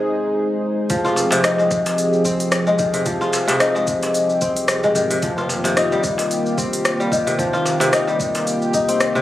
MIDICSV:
0, 0, Header, 1, 6, 480
1, 0, Start_track
1, 0, Key_signature, -4, "minor"
1, 0, Tempo, 540541
1, 798, Time_signature, 4, 2, 24, 8
1, 8185, End_track
2, 0, Start_track
2, 0, Title_t, "Analog synth pad"
2, 0, Program_c, 0, 89
2, 0, Note_on_c, 0, 56, 80
2, 0, Note_on_c, 0, 63, 70
2, 0, Note_on_c, 0, 68, 89
2, 0, Note_on_c, 0, 72, 88
2, 759, Note_off_c, 0, 63, 0
2, 759, Note_off_c, 0, 72, 0
2, 760, Note_off_c, 0, 56, 0
2, 780, Note_off_c, 0, 68, 0
2, 794, Note_on_c, 0, 68, 87
2, 795, Note_on_c, 0, 53, 84
2, 797, Note_on_c, 0, 60, 76
2, 799, Note_on_c, 0, 67, 75
2, 4601, Note_off_c, 0, 53, 0
2, 4601, Note_off_c, 0, 68, 0
2, 4602, Note_off_c, 0, 60, 0
2, 4635, Note_on_c, 0, 58, 80
2, 4635, Note_on_c, 0, 65, 72
2, 4636, Note_on_c, 0, 51, 76
2, 8185, Note_off_c, 0, 51, 0
2, 8185, Note_off_c, 0, 58, 0
2, 8185, Note_off_c, 0, 65, 0
2, 8185, Note_off_c, 0, 67, 0
2, 8185, End_track
3, 0, Start_track
3, 0, Title_t, "Kora"
3, 0, Program_c, 1, 46
3, 0, Note_on_c, 1, 48, 101
3, 0, Note_on_c, 1, 56, 75
3, 0, Note_on_c, 1, 63, 79
3, 0, Note_on_c, 1, 65, 94
3, 354, Note_off_c, 1, 65, 0
3, 797, Note_off_c, 1, 63, 0
3, 797, Note_on_c, 1, 53, 78
3, 843, Note_off_c, 1, 48, 0
3, 843, Note_off_c, 1, 56, 0
3, 929, Note_on_c, 1, 65, 99
3, 1170, Note_on_c, 1, 48, 101
3, 1203, Note_off_c, 1, 53, 0
3, 1277, Note_on_c, 1, 63, 74
3, 1414, Note_on_c, 1, 56, 69
3, 1997, Note_on_c, 1, 60, 74
3, 2273, Note_off_c, 1, 65, 0
3, 2358, Note_off_c, 1, 56, 0
3, 2369, Note_on_c, 1, 56, 82
3, 2474, Note_on_c, 1, 51, 73
3, 2523, Note_off_c, 1, 48, 0
3, 2523, Note_off_c, 1, 56, 0
3, 2609, Note_on_c, 1, 48, 104
3, 2643, Note_off_c, 1, 51, 0
3, 2715, Note_on_c, 1, 53, 78
3, 2717, Note_off_c, 1, 63, 0
3, 2852, Note_on_c, 1, 65, 108
3, 3076, Note_off_c, 1, 48, 0
3, 3087, Note_on_c, 1, 48, 102
3, 3123, Note_off_c, 1, 53, 0
3, 3197, Note_on_c, 1, 63, 78
3, 3329, Note_on_c, 1, 56, 74
3, 3595, Note_off_c, 1, 60, 0
3, 3921, Note_on_c, 1, 60, 74
3, 4196, Note_off_c, 1, 65, 0
3, 4284, Note_off_c, 1, 56, 0
3, 4294, Note_on_c, 1, 56, 77
3, 4395, Note_on_c, 1, 51, 76
3, 4443, Note_off_c, 1, 48, 0
3, 4443, Note_off_c, 1, 56, 0
3, 4532, Note_on_c, 1, 48, 96
3, 4563, Note_off_c, 1, 51, 0
3, 4637, Note_off_c, 1, 63, 0
3, 4643, Note_on_c, 1, 53, 73
3, 4683, Note_off_c, 1, 48, 0
3, 4776, Note_on_c, 1, 65, 103
3, 5012, Note_on_c, 1, 48, 102
3, 5043, Note_off_c, 1, 53, 0
3, 5120, Note_on_c, 1, 63, 82
3, 5259, Note_on_c, 1, 55, 76
3, 5520, Note_off_c, 1, 60, 0
3, 5842, Note_on_c, 1, 60, 72
3, 6120, Note_off_c, 1, 65, 0
3, 6205, Note_off_c, 1, 55, 0
3, 6215, Note_on_c, 1, 55, 78
3, 6319, Note_on_c, 1, 51, 69
3, 6363, Note_off_c, 1, 48, 0
3, 6363, Note_off_c, 1, 55, 0
3, 6455, Note_on_c, 1, 48, 101
3, 6483, Note_off_c, 1, 51, 0
3, 6558, Note_on_c, 1, 53, 78
3, 6561, Note_off_c, 1, 63, 0
3, 6689, Note_on_c, 1, 65, 102
3, 6918, Note_off_c, 1, 48, 0
3, 6929, Note_on_c, 1, 48, 99
3, 6963, Note_off_c, 1, 53, 0
3, 7038, Note_on_c, 1, 63, 78
3, 7171, Note_on_c, 1, 55, 74
3, 7440, Note_off_c, 1, 60, 0
3, 7756, Note_off_c, 1, 63, 0
3, 7759, Note_on_c, 1, 63, 71
3, 7890, Note_on_c, 1, 60, 77
3, 8033, Note_off_c, 1, 65, 0
3, 8117, Note_off_c, 1, 48, 0
3, 8128, Note_on_c, 1, 48, 107
3, 8185, Note_off_c, 1, 48, 0
3, 8185, Note_off_c, 1, 55, 0
3, 8185, Note_off_c, 1, 60, 0
3, 8185, Note_off_c, 1, 63, 0
3, 8185, End_track
4, 0, Start_track
4, 0, Title_t, "Upright bass"
4, 0, Program_c, 2, 32
4, 800, Note_on_c, 2, 29, 100
4, 1475, Note_off_c, 2, 29, 0
4, 1518, Note_on_c, 2, 29, 83
4, 1618, Note_off_c, 2, 29, 0
4, 1997, Note_on_c, 2, 29, 84
4, 2914, Note_off_c, 2, 29, 0
4, 3441, Note_on_c, 2, 29, 79
4, 3539, Note_off_c, 2, 29, 0
4, 3922, Note_on_c, 2, 36, 87
4, 4356, Note_off_c, 2, 36, 0
4, 4397, Note_on_c, 2, 32, 98
4, 4583, Note_off_c, 2, 32, 0
4, 4643, Note_on_c, 2, 29, 103
4, 5317, Note_off_c, 2, 29, 0
4, 5363, Note_on_c, 2, 29, 86
4, 5460, Note_off_c, 2, 29, 0
4, 5840, Note_on_c, 2, 29, 89
4, 6756, Note_off_c, 2, 29, 0
4, 7279, Note_on_c, 2, 29, 81
4, 7378, Note_off_c, 2, 29, 0
4, 7762, Note_on_c, 2, 36, 82
4, 8185, Note_off_c, 2, 36, 0
4, 8185, End_track
5, 0, Start_track
5, 0, Title_t, "Darbuka"
5, 930, Note_on_c, 9, 64, 76
5, 940, Note_on_c, 9, 62, 62
5, 1018, Note_off_c, 9, 64, 0
5, 1029, Note_off_c, 9, 62, 0
5, 1033, Note_on_c, 9, 62, 50
5, 1033, Note_on_c, 9, 63, 64
5, 1122, Note_off_c, 9, 62, 0
5, 1122, Note_off_c, 9, 63, 0
5, 1160, Note_on_c, 9, 63, 82
5, 1249, Note_off_c, 9, 63, 0
5, 1407, Note_on_c, 9, 62, 51
5, 1496, Note_off_c, 9, 62, 0
5, 1655, Note_on_c, 9, 63, 73
5, 1744, Note_off_c, 9, 63, 0
5, 2607, Note_on_c, 9, 64, 79
5, 2696, Note_off_c, 9, 64, 0
5, 2850, Note_on_c, 9, 62, 60
5, 2939, Note_off_c, 9, 62, 0
5, 2959, Note_on_c, 9, 62, 49
5, 2959, Note_on_c, 9, 63, 72
5, 3048, Note_off_c, 9, 62, 0
5, 3048, Note_off_c, 9, 63, 0
5, 3094, Note_on_c, 9, 62, 37
5, 3102, Note_on_c, 9, 63, 85
5, 3183, Note_off_c, 9, 62, 0
5, 3190, Note_off_c, 9, 63, 0
5, 3338, Note_on_c, 9, 62, 56
5, 3426, Note_off_c, 9, 62, 0
5, 3580, Note_on_c, 9, 63, 71
5, 3669, Note_off_c, 9, 63, 0
5, 4298, Note_on_c, 9, 64, 91
5, 4387, Note_off_c, 9, 64, 0
5, 4775, Note_on_c, 9, 64, 90
5, 4777, Note_on_c, 9, 62, 67
5, 4864, Note_off_c, 9, 64, 0
5, 4866, Note_off_c, 9, 62, 0
5, 4878, Note_on_c, 9, 63, 70
5, 4881, Note_on_c, 9, 62, 52
5, 4967, Note_off_c, 9, 63, 0
5, 4970, Note_off_c, 9, 62, 0
5, 5009, Note_on_c, 9, 63, 72
5, 5098, Note_off_c, 9, 63, 0
5, 5256, Note_on_c, 9, 62, 49
5, 5345, Note_off_c, 9, 62, 0
5, 5487, Note_on_c, 9, 63, 66
5, 5576, Note_off_c, 9, 63, 0
5, 6453, Note_on_c, 9, 64, 92
5, 6542, Note_off_c, 9, 64, 0
5, 6693, Note_on_c, 9, 62, 60
5, 6782, Note_off_c, 9, 62, 0
5, 6799, Note_on_c, 9, 63, 61
5, 6806, Note_on_c, 9, 62, 46
5, 6887, Note_off_c, 9, 63, 0
5, 6895, Note_off_c, 9, 62, 0
5, 6927, Note_on_c, 9, 63, 78
5, 6934, Note_on_c, 9, 62, 35
5, 7016, Note_off_c, 9, 63, 0
5, 7023, Note_off_c, 9, 62, 0
5, 7170, Note_on_c, 9, 62, 49
5, 7258, Note_off_c, 9, 62, 0
5, 7416, Note_on_c, 9, 63, 68
5, 7505, Note_off_c, 9, 63, 0
5, 8135, Note_on_c, 9, 64, 103
5, 8185, Note_off_c, 9, 64, 0
5, 8185, End_track
6, 0, Start_track
6, 0, Title_t, "Drums"
6, 797, Note_on_c, 9, 46, 49
6, 797, Note_on_c, 9, 82, 48
6, 800, Note_on_c, 9, 36, 122
6, 886, Note_off_c, 9, 46, 0
6, 886, Note_off_c, 9, 82, 0
6, 889, Note_off_c, 9, 36, 0
6, 935, Note_on_c, 9, 82, 22
6, 1024, Note_off_c, 9, 82, 0
6, 1039, Note_on_c, 9, 82, 80
6, 1127, Note_off_c, 9, 82, 0
6, 1172, Note_on_c, 9, 46, 56
6, 1172, Note_on_c, 9, 82, 35
6, 1261, Note_off_c, 9, 46, 0
6, 1261, Note_off_c, 9, 82, 0
6, 1278, Note_on_c, 9, 37, 104
6, 1278, Note_on_c, 9, 46, 44
6, 1279, Note_on_c, 9, 82, 43
6, 1367, Note_off_c, 9, 37, 0
6, 1367, Note_off_c, 9, 46, 0
6, 1367, Note_off_c, 9, 82, 0
6, 1413, Note_on_c, 9, 82, 20
6, 1502, Note_off_c, 9, 82, 0
6, 1519, Note_on_c, 9, 37, 34
6, 1519, Note_on_c, 9, 82, 83
6, 1520, Note_on_c, 9, 36, 106
6, 1607, Note_off_c, 9, 37, 0
6, 1608, Note_off_c, 9, 82, 0
6, 1609, Note_off_c, 9, 36, 0
6, 1652, Note_on_c, 9, 46, 62
6, 1653, Note_on_c, 9, 82, 36
6, 1741, Note_off_c, 9, 46, 0
6, 1741, Note_off_c, 9, 82, 0
6, 1760, Note_on_c, 9, 46, 48
6, 1760, Note_on_c, 9, 82, 45
6, 1849, Note_off_c, 9, 46, 0
6, 1849, Note_off_c, 9, 82, 0
6, 1892, Note_on_c, 9, 82, 23
6, 1981, Note_off_c, 9, 82, 0
6, 1997, Note_on_c, 9, 82, 72
6, 2000, Note_on_c, 9, 36, 63
6, 2086, Note_off_c, 9, 82, 0
6, 2088, Note_off_c, 9, 36, 0
6, 2132, Note_on_c, 9, 46, 56
6, 2133, Note_on_c, 9, 82, 34
6, 2221, Note_off_c, 9, 46, 0
6, 2221, Note_off_c, 9, 82, 0
6, 2236, Note_on_c, 9, 37, 110
6, 2236, Note_on_c, 9, 46, 46
6, 2237, Note_on_c, 9, 82, 47
6, 2325, Note_off_c, 9, 37, 0
6, 2325, Note_off_c, 9, 46, 0
6, 2325, Note_off_c, 9, 82, 0
6, 2369, Note_on_c, 9, 82, 21
6, 2458, Note_off_c, 9, 82, 0
6, 2474, Note_on_c, 9, 82, 77
6, 2480, Note_on_c, 9, 36, 107
6, 2563, Note_off_c, 9, 82, 0
6, 2569, Note_off_c, 9, 36, 0
6, 2609, Note_on_c, 9, 46, 57
6, 2609, Note_on_c, 9, 82, 34
6, 2698, Note_off_c, 9, 46, 0
6, 2698, Note_off_c, 9, 82, 0
6, 2715, Note_on_c, 9, 46, 47
6, 2715, Note_on_c, 9, 82, 50
6, 2720, Note_on_c, 9, 36, 120
6, 2804, Note_off_c, 9, 46, 0
6, 2804, Note_off_c, 9, 82, 0
6, 2809, Note_off_c, 9, 36, 0
6, 2854, Note_on_c, 9, 82, 22
6, 2943, Note_off_c, 9, 82, 0
6, 2957, Note_on_c, 9, 82, 82
6, 3046, Note_off_c, 9, 82, 0
6, 3094, Note_on_c, 9, 46, 58
6, 3094, Note_on_c, 9, 82, 37
6, 3183, Note_off_c, 9, 46, 0
6, 3183, Note_off_c, 9, 82, 0
6, 3199, Note_on_c, 9, 37, 104
6, 3199, Note_on_c, 9, 46, 43
6, 3200, Note_on_c, 9, 82, 43
6, 3288, Note_off_c, 9, 37, 0
6, 3288, Note_off_c, 9, 46, 0
6, 3288, Note_off_c, 9, 82, 0
6, 3338, Note_on_c, 9, 82, 24
6, 3427, Note_off_c, 9, 82, 0
6, 3439, Note_on_c, 9, 82, 85
6, 3441, Note_on_c, 9, 36, 101
6, 3527, Note_off_c, 9, 82, 0
6, 3530, Note_off_c, 9, 36, 0
6, 3575, Note_on_c, 9, 46, 59
6, 3575, Note_on_c, 9, 82, 37
6, 3663, Note_off_c, 9, 46, 0
6, 3664, Note_off_c, 9, 82, 0
6, 3680, Note_on_c, 9, 46, 47
6, 3680, Note_on_c, 9, 82, 50
6, 3769, Note_off_c, 9, 46, 0
6, 3769, Note_off_c, 9, 82, 0
6, 3815, Note_on_c, 9, 82, 26
6, 3904, Note_off_c, 9, 82, 0
6, 3920, Note_on_c, 9, 82, 78
6, 3922, Note_on_c, 9, 36, 66
6, 4009, Note_off_c, 9, 82, 0
6, 4011, Note_off_c, 9, 36, 0
6, 4054, Note_on_c, 9, 46, 57
6, 4054, Note_on_c, 9, 82, 34
6, 4142, Note_off_c, 9, 46, 0
6, 4143, Note_off_c, 9, 82, 0
6, 4157, Note_on_c, 9, 37, 104
6, 4157, Note_on_c, 9, 46, 46
6, 4157, Note_on_c, 9, 82, 46
6, 4246, Note_off_c, 9, 37, 0
6, 4246, Note_off_c, 9, 46, 0
6, 4246, Note_off_c, 9, 82, 0
6, 4292, Note_on_c, 9, 82, 21
6, 4381, Note_off_c, 9, 82, 0
6, 4399, Note_on_c, 9, 82, 74
6, 4488, Note_off_c, 9, 82, 0
6, 4534, Note_on_c, 9, 46, 56
6, 4535, Note_on_c, 9, 82, 35
6, 4623, Note_off_c, 9, 46, 0
6, 4624, Note_off_c, 9, 82, 0
6, 4639, Note_on_c, 9, 46, 48
6, 4640, Note_on_c, 9, 82, 50
6, 4642, Note_on_c, 9, 36, 127
6, 4728, Note_off_c, 9, 46, 0
6, 4729, Note_off_c, 9, 82, 0
6, 4731, Note_off_c, 9, 36, 0
6, 4776, Note_on_c, 9, 82, 24
6, 4865, Note_off_c, 9, 82, 0
6, 4882, Note_on_c, 9, 82, 85
6, 4971, Note_off_c, 9, 82, 0
6, 5017, Note_on_c, 9, 46, 58
6, 5017, Note_on_c, 9, 82, 36
6, 5106, Note_off_c, 9, 46, 0
6, 5106, Note_off_c, 9, 82, 0
6, 5123, Note_on_c, 9, 37, 95
6, 5123, Note_on_c, 9, 46, 45
6, 5123, Note_on_c, 9, 82, 46
6, 5211, Note_off_c, 9, 37, 0
6, 5211, Note_off_c, 9, 46, 0
6, 5212, Note_off_c, 9, 82, 0
6, 5257, Note_on_c, 9, 82, 22
6, 5345, Note_off_c, 9, 82, 0
6, 5360, Note_on_c, 9, 37, 31
6, 5360, Note_on_c, 9, 82, 86
6, 5362, Note_on_c, 9, 36, 113
6, 5448, Note_off_c, 9, 37, 0
6, 5449, Note_off_c, 9, 82, 0
6, 5451, Note_off_c, 9, 36, 0
6, 5496, Note_on_c, 9, 46, 61
6, 5496, Note_on_c, 9, 82, 36
6, 5585, Note_off_c, 9, 46, 0
6, 5585, Note_off_c, 9, 82, 0
6, 5602, Note_on_c, 9, 46, 46
6, 5603, Note_on_c, 9, 82, 51
6, 5691, Note_off_c, 9, 46, 0
6, 5691, Note_off_c, 9, 82, 0
6, 5737, Note_on_c, 9, 82, 25
6, 5826, Note_off_c, 9, 82, 0
6, 5843, Note_on_c, 9, 36, 69
6, 5843, Note_on_c, 9, 82, 78
6, 5931, Note_off_c, 9, 36, 0
6, 5932, Note_off_c, 9, 82, 0
6, 5979, Note_on_c, 9, 46, 53
6, 5979, Note_on_c, 9, 82, 35
6, 6068, Note_off_c, 9, 46, 0
6, 6068, Note_off_c, 9, 82, 0
6, 6084, Note_on_c, 9, 37, 104
6, 6084, Note_on_c, 9, 46, 42
6, 6084, Note_on_c, 9, 82, 44
6, 6173, Note_off_c, 9, 37, 0
6, 6173, Note_off_c, 9, 46, 0
6, 6173, Note_off_c, 9, 82, 0
6, 6220, Note_on_c, 9, 82, 23
6, 6309, Note_off_c, 9, 82, 0
6, 6321, Note_on_c, 9, 36, 110
6, 6326, Note_on_c, 9, 82, 79
6, 6410, Note_off_c, 9, 36, 0
6, 6415, Note_off_c, 9, 82, 0
6, 6459, Note_on_c, 9, 46, 54
6, 6460, Note_on_c, 9, 82, 36
6, 6548, Note_off_c, 9, 46, 0
6, 6549, Note_off_c, 9, 82, 0
6, 6561, Note_on_c, 9, 36, 127
6, 6564, Note_on_c, 9, 46, 43
6, 6565, Note_on_c, 9, 82, 49
6, 6650, Note_off_c, 9, 36, 0
6, 6653, Note_off_c, 9, 46, 0
6, 6653, Note_off_c, 9, 82, 0
6, 6697, Note_on_c, 9, 82, 23
6, 6785, Note_off_c, 9, 82, 0
6, 6802, Note_on_c, 9, 82, 76
6, 6890, Note_off_c, 9, 82, 0
6, 6936, Note_on_c, 9, 46, 57
6, 6937, Note_on_c, 9, 82, 34
6, 7025, Note_off_c, 9, 46, 0
6, 7026, Note_off_c, 9, 82, 0
6, 7041, Note_on_c, 9, 37, 96
6, 7041, Note_on_c, 9, 46, 42
6, 7042, Note_on_c, 9, 82, 45
6, 7130, Note_off_c, 9, 37, 0
6, 7130, Note_off_c, 9, 46, 0
6, 7130, Note_off_c, 9, 82, 0
6, 7175, Note_on_c, 9, 82, 21
6, 7264, Note_off_c, 9, 82, 0
6, 7281, Note_on_c, 9, 36, 110
6, 7282, Note_on_c, 9, 82, 83
6, 7369, Note_off_c, 9, 36, 0
6, 7371, Note_off_c, 9, 82, 0
6, 7413, Note_on_c, 9, 46, 53
6, 7413, Note_on_c, 9, 82, 37
6, 7502, Note_off_c, 9, 46, 0
6, 7502, Note_off_c, 9, 82, 0
6, 7521, Note_on_c, 9, 46, 44
6, 7521, Note_on_c, 9, 82, 48
6, 7610, Note_off_c, 9, 46, 0
6, 7610, Note_off_c, 9, 82, 0
6, 7655, Note_on_c, 9, 82, 24
6, 7744, Note_off_c, 9, 82, 0
6, 7760, Note_on_c, 9, 82, 79
6, 7762, Note_on_c, 9, 36, 59
6, 7849, Note_off_c, 9, 82, 0
6, 7850, Note_off_c, 9, 36, 0
6, 7891, Note_on_c, 9, 46, 53
6, 7891, Note_on_c, 9, 82, 35
6, 7980, Note_off_c, 9, 46, 0
6, 7980, Note_off_c, 9, 82, 0
6, 7996, Note_on_c, 9, 37, 98
6, 7996, Note_on_c, 9, 46, 42
6, 7997, Note_on_c, 9, 82, 45
6, 8085, Note_off_c, 9, 37, 0
6, 8085, Note_off_c, 9, 46, 0
6, 8085, Note_off_c, 9, 82, 0
6, 8134, Note_on_c, 9, 82, 22
6, 8185, Note_off_c, 9, 82, 0
6, 8185, End_track
0, 0, End_of_file